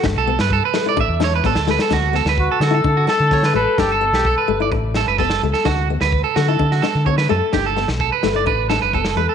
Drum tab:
SD |o--o--o---o-oooo|o-oo--o---o-oo--|o--o------o-oo-o|o--o--o--oo--o--|
BD |o---o---o---o---|o---o---o---o---|o---o---o---o---|o---o---o---o---|

SD |o-oo--o---o--o--|
BD |o---o---o---o---|